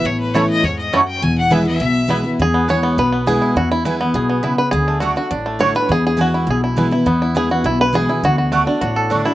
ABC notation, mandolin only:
X:1
M:4/4
L:1/8
Q:1/4=205
K:E
V:1 name="Mandolin"
z2 [A,Eca] z3 [A,Eca] z | z2 [B,EBg] z3 [B,EBg] z | [K:Emix] z2 [B,EBg] z3 [B,EBg] z | z2 [B,EBg] z3 [B,EBg] z |
z2 [A,Fdf] z3 [A,Fdf] z | z2 [B,EBg] z3 [B,EBg] z | z2 [B,EBg] z3 [B,EBg] z | z2 [A,Fdf] z3 [A,Fdf] z |]